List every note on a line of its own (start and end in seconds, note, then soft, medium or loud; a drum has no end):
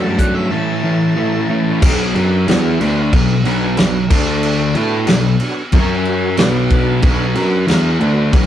0.00 0.50 G2 medium
0.00 0.17 F#3 medium
0.00 0.18 A3 medium
0.00 0.18 C#4 medium
0.00 0.19 F#4 medium
0.00 0.18 F#5 medium
0.00 0.19 A5 medium
0.18 0.49 F#3 medium
0.18 0.42 A3 medium
0.18 0.50 A3 medium
0.18 0.50 C#4 medium
0.18 0.42 C#4 medium
0.18 0.42 F#4 medium
0.18 0.50 F#4 medium
0.18 0.43 A4 medium
0.18 0.34 D5 medium
0.18 0.35 F#5 medium
0.18 kick medium
0.18 closed hi-hat medium
0.34 0.50 C#5 medium
0.34 0.51 E5 medium
0.50 0.82 A2 medium
0.50 0.82 E3 medium
0.50 0.83 A3 medium
0.50 0.75 A3 medium
0.50 0.83 C#4 medium
0.50 0.74 C#4 medium
0.50 0.83 E4 medium
0.50 0.75 A4 medium
0.50 1.77 E5 medium
0.50 1.78 A5 medium
0.54 0.75 E4 medium
0.83 1.15 A2 medium
0.83 1.15 E3 medium
0.83 1.07 A3 medium
0.83 1.16 A3 medium
0.83 1.07 C#4 medium
0.83 1.16 C#4 medium
0.83 1.17 E4 medium
0.83 1.07 E4 medium
0.83 1.07 B4 medium
1.16 1.48 A2 medium
1.16 1.48 E3 medium
1.16 1.49 A3 medium
1.16 1.40 A3 medium
1.16 1.49 C#4 medium
1.16 1.40 C#4 medium
1.16 1.49 E4 medium
1.16 1.40 E4 medium
1.16 1.41 A4 medium
1.49 1.80 A2 medium
1.49 1.80 E3 medium
1.49 1.72 A3 medium
1.49 1.80 A3 medium
1.49 1.72 C#4 medium
1.49 1.80 C#4 medium
1.49 1.73 E4 medium
1.49 1.80 E4 medium
1.49 1.73 B4 medium
1.82 2.13 B1 medium
1.82 2.14 B2 medium
1.82 2.13 F#3 medium
1.82 2.05 B3 loud
1.82 2.14 B3 loud
1.82 2.05 D4 loud
1.82 2.05 F#4 loud
1.82 2.05 B4 loud
1.82 kick loud
1.82 crash loud
1.82 crash medium
2.14 2.45 F#2 medium
2.14 2.46 F#3 medium
2.14 2.37 B3 medium
2.14 2.47 C#4 medium
2.14 2.38 D4 medium
2.14 2.38 F#4 medium
2.14 2.47 F#4 medium
2.14 2.38 B4 loud
2.14 crash medium
2.48 2.78 E2 medium
2.48 2.79 E3 medium
2.48 2.70 B3 medium
2.48 2.80 B3 loud
2.48 2.71 D4 medium
2.48 2.80 E4 loud
2.48 2.71 F#4 medium
2.48 2.71 C#5 loud
2.48 snare loud
2.48 crash medium
2.79 3.10 D2 loud
2.79 3.12 D3 medium
2.79 3.12 A3 medium
2.79 3.02 B3 loud
2.79 3.03 D4 loud
2.79 3.12 D4 loud
2.79 3.03 F#4 loud
2.79 3.03 B4 loud
2.79 crash medium
3.13 3.43 B1 medium
3.13 3.39 B2 medium
3.13 3.39 F#3 medium
3.13 3.35 B3 medium
3.13 3.36 D4 medium
3.13 3.36 F#4 medium
3.13 3.36 B4 medium
3.13 kick loud
3.13 crash medium
3.43 3.75 B1 medium
3.43 3.76 B2 medium
3.43 3.77 F#3 loud
3.43 3.67 B3 loud
3.43 3.77 B3 loud
3.43 3.67 D4 loud
3.43 3.68 F#4 loud
3.43 3.68 B4 loud
3.43 crash medium
3.76 4.08 B1 medium
3.76 4.04 B2 medium
3.76 4.04 F#3 medium
3.76 4.00 B3 medium
3.76 4.00 D4 medium
3.76 4.00 F#4 medium
3.76 4.00 B4 loud
3.76 snare loud
3.76 crash medium
4.09 4.71 D2 loud
4.09 4.74 D3 medium
4.09 4.62 A3 medium
4.09 4.75 A3 medium
4.09 4.62 D4 medium
4.09 4.75 D4 loud
4.09 4.62 A4 medium
4.09 4.62 D5 loud
4.09 kick loud
4.09 crash medium
4.43 crash medium
4.74 5.05 A2 loud
4.74 5.07 A3 medium
4.74 5.27 B3 medium
4.74 5.27 D4 medium
4.74 5.07 E4 medium
4.74 5.27 F#4 medium
4.74 5.08 A4 loud
4.74 5.27 B4 medium
4.74 crash medium
5.07 5.38 B1 medium
5.07 5.34 B2 medium
5.07 5.34 F#3 medium
5.07 snare loud
5.07 crash medium
5.40 5.63 B3 loud
5.40 5.63 D4 loud
5.40 5.63 F#4 loud
5.40 5.63 C#5 loud
5.40 crash medium
5.72 6.34 F#2 medium
5.72 6.37 F#3 medium
5.72 5.97 F#3 medium
5.72 6.37 C#4 loud
5.72 5.96 C#4 medium
5.72 6.37 F#4 loud
5.72 5.97 F#4 medium
5.72 5.97 C#5 medium
5.72 kick loud
5.72 crash medium
6.05 6.29 F#3 loud
6.05 6.29 C#4 loud
6.05 6.29 F#4 loud
6.05 6.29 C#5 loud
6.05 6.36 E5 medium
6.05 crash soft
6.37 6.99 B1 medium
6.37 7.01 B2 medium
6.37 7.01 F#3 loud
6.37 6.61 B3 medium
6.37 7.02 B3 loud
6.37 6.61 D4 medium
6.37 6.61 F#4 medium
6.37 6.62 B4 loud
6.37 6.54 F#5 medium
6.37 snare loud
6.37 crash medium
6.56 6.71 G5 medium
6.70 6.94 B3 medium
6.70 6.94 D4 medium
6.70 6.94 F#4 medium
6.70 6.95 B4 loud
6.70 7.02 A5 medium
6.70 kick medium
6.70 crash medium
7.02 7.34 B1 loud
7.02 7.34 B2 medium
7.02 7.34 F#3 medium
7.02 7.35 B3 loud
7.02 7.26 B3 loud
7.02 7.27 D4 loud
7.02 7.27 F#4 loud
7.02 7.27 B4 loud
7.02 kick loud
7.02 crash medium
7.35 7.66 F#2 medium
7.35 7.67 F#3 medium
7.35 7.59 B3 medium
7.35 7.67 C#4 medium
7.35 7.59 D4 medium
7.35 7.67 F#4 medium
7.35 7.60 F#4 medium
7.35 7.59 B4 medium
7.35 crash medium
7.67 7.98 E2 medium
7.67 7.99 E3 medium
7.67 7.99 B3 medium
7.67 7.92 B3 medium
7.67 7.92 D4 medium
7.67 8.00 E4 loud
7.67 7.92 F#4 medium
7.67 7.92 B4 loud
7.67 snare loud
7.67 crash medium
8.00 8.31 D2 medium
8.00 8.32 D3 medium
8.00 8.32 A3 medium
8.00 8.23 B3 loud
8.00 8.23 D4 loud
8.00 8.32 D4 loud
8.00 8.24 F#4 loud
8.00 8.24 B4 loud
8.00 crash medium
8.33 8.46 B1 medium
8.33 8.46 B2 medium
8.33 8.46 F#3 medium
8.33 8.46 B3 medium
8.33 8.46 D4 medium
8.33 8.46 F#4 medium
8.33 8.46 B4 medium
8.33 kick loud
8.33 crash medium